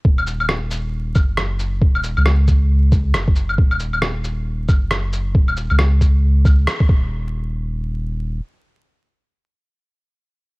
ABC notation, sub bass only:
X:1
M:4/4
L:1/16
Q:"Swing 16ths" 1/4=136
K:Gb
V:1 name="Sub bass" clef=bass
E,,,8- E,,,2 G,,,6 | E,,,3 D,,8- D,, G,,,4 | E,,,8- E,,,2 G,,,6 | E,,,3 D,,8- D,, z2 E,,,2- |
E,,,12 z4 | z16 |]